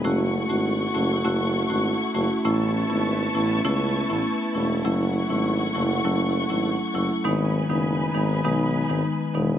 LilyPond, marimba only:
\new Staff \with { instrumentName = "Marimba" } { \time 4/4 \key fis \dorian \tempo 4 = 100 <a cis' e' fis'>8. <a cis' e' fis'>16 r8 <a cis' e' fis'>16 r16 <a cis' e' fis'>8. <a cis' e' fis'>16 r8 <a cis' e' fis'>16 r16 | <a b cis' e'>8. <a b cis' e'>16 r8 <a b cis' e'>16 r16 <a b cis' e'>8. <a b cis' e'>8. <a b cis' e'>8 | <fis a cis' e'>8. <fis a cis' e'>16 r8 <fis a cis' e'>16 r16 <fis a cis' e'>8. <fis a cis' e'>16 r8 <fis a cis' e'>16 r16 | <dis gis b dis'>8. <dis gis b dis'>16 r8 <dis gis b dis'>16 r16 <dis gis b dis'>8. <dis gis b dis'>8. <dis gis b dis'>8 | }